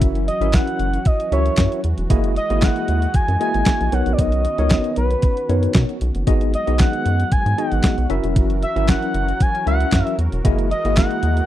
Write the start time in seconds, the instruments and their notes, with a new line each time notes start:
Already playing: analog synth pad E3 F#3 C#4 F#4, tine electric piano C#4 E4 F#4 A#4 E5
0.01 analog synth bass F#1, kick, closed hi-hat
0.15 closed hi-hat
0.28 analog synth lead D#5, closed hi-hat
0.41 analog synth bass G#1, tine electric piano C#4 E4 F#4 A#4 E5, closed hi-hat
0.53 analog synth lead F#5, kick, snare, clap, closed hi-hat
0.67 closed hi-hat
0.79 analog synth bass F#1, closed hi-hat
0.94 closed hi-hat
1.05 analog synth lead D#5, kick, closed hi-hat
1.20 closed hi-hat
1.32 analog synth bass C#2, tine electric piano C#4 E4 F#4 A#4 E5, analog synth lead C#5, closed hi-hat
1.46 closed hi-hat
1.57 analog synth bass F#2, kick, snare, clap, closed hi-hat
1.72 closed hi-hat
1.84 analog synth bass E2, closed hi-hat
1.98 analog synth bass E1, closed hi-hat
2.10 analog synth bass F#1, analog synth pad G#3 D#5, tine electric piano A#3 E4 F#4 G#4 D#5, kick, closed hi-hat
2.24 closed hi-hat
2.36 analog synth lead D#5, closed hi-hat
2.50 analog synth bass G#1, tine electric piano A#3 E4 F#4 G#4 D#5, closed hi-hat
2.62 analog synth lead F#5, kick, snare, clap, closed hi-hat
2.76 closed hi-hat
2.88 analog synth bass D#2, closed hi-hat
3.02 closed hi-hat
3.14 analog synth bass F#2, analog synth lead G#5, kick, closed hi-hat
3.28 analog synth bass F#2, closed hi-hat
3.40 tine electric piano A#3 E4 F#4 G#4 D#5, analog synth lead G#5, closed hi-hat
3.54 analog synth bass G#1, closed hi-hat
3.66 kick, snare, clap, closed hi-hat
3.80 analog synth bass A#1, closed hi-hat
3.91 analog synth bass B1, analog synth pad D#3 B3 C#4, tine electric piano B3 D#4 F#4 A#4 C#5, analog synth lead F#5, closed hi-hat
4.06 analog synth bass A#1, closed hi-hat
4.13 analog synth lead D5
4.19 analog synth bass B1, analog synth lead D#5, kick, closed hi-hat
4.32 closed hi-hat
4.45 closed hi-hat
4.58 analog synth bass C#2, tine electric piano B3 D#4 F#4 A#4 C#5, closed hi-hat
4.70 kick, snare, clap, closed hi-hat
4.84 closed hi-hat
4.96 analog synth bass B1, analog synth lead B4, closed hi-hat
5.11 closed hi-hat
5.22 kick, closed hi-hat
5.37 closed hi-hat
5.49 analog synth bass F#2, tine electric piano B3 D#4 F#4 A#4 C#5, closed hi-hat
5.63 closed hi-hat
5.74 analog synth bass B2, kick, snare, clap, closed hi-hat
5.89 closed hi-hat
6.01 analog synth bass B1, closed hi-hat
6.15 analog synth bass F#1, closed hi-hat
6.27 analog synth bass G#1, analog synth pad F#3 G#3 B3 F#4, tine electric piano B3 D#4 F#4 G#4 D#5, kick, closed hi-hat
6.41 closed hi-hat
6.54 analog synth lead D#5, closed hi-hat
6.67 analog synth bass B1, tine electric piano B3 D#4 F#4 G#4 D#5, closed hi-hat
6.79 analog synth lead F#5, kick, snare, clap, closed hi-hat
6.93 closed hi-hat
7.06 analog synth bass F#2, closed hi-hat
7.20 closed hi-hat
7.32 analog synth bass G#2, analog synth lead G#5, kick, closed hi-hat
7.46 analog synth bass G#2, closed hi-hat
7.57 tine electric piano B3 D#4 F#4 G#4 D#5, analog synth lead F#5, closed hi-hat
7.72 analog synth bass G#1, closed hi-hat
7.84 kick, snare, clap, closed hi-hat
7.98 analog synth bass B1, closed hi-hat
8.09 analog synth bass F#1, analog synth pad E3 C#4 A#4, tine electric piano C#4 E4 F#4 A#4 E5, closed hi-hat
8.24 analog synth bass E1, closed hi-hat
8.36 analog synth bass F#1, kick, closed hi-hat
8.50 closed hi-hat
8.63 analog synth lead E5, closed hi-hat
8.76 analog synth bass G#1, tine electric piano C#4 E4 F#4 A#4 E5, closed hi-hat
8.88 analog synth lead F#5, kick, snare, clap, closed hi-hat
9.02 closed hi-hat
9.14 analog synth bass F#1, closed hi-hat
9.28 closed hi-hat
9.40 analog synth lead G#5, kick, closed hi-hat
9.55 closed hi-hat
9.67 analog synth bass C#2, tine electric piano C#4 E4 F#4 A#4 E5, analog synth lead F#5, closed hi-hat
9.80 closed hi-hat
9.92 analog synth bass F#2, kick, snare, clap, closed hi-hat
10.07 closed hi-hat
10.18 analog synth bass E2, closed hi-hat
10.32 analog synth bass E1, closed hi-hat
10.44 analog synth bass F#1, analog synth pad G#3 D#5, tine electric piano A#3 E4 F#4 G#4 D#5, kick, closed hi-hat
10.59 closed hi-hat
10.71 analog synth lead D#5, closed hi-hat
10.85 analog synth bass G#1, tine electric piano A#3 E4 F#4 G#4 D#5, closed hi-hat
10.97 analog synth lead F#5, kick, snare, clap, closed hi-hat
11.11 closed hi-hat
11.23 analog synth bass D#2, closed hi-hat
11.37 closed hi-hat